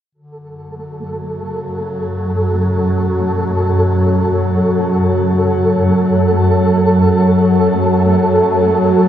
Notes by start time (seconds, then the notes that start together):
0.14 F#2 D3 F#3 F#4 A4
1.17 C#5
1.39 C#3
1.62 F#5
2.00 A5
2.64 B2
5.13 C#3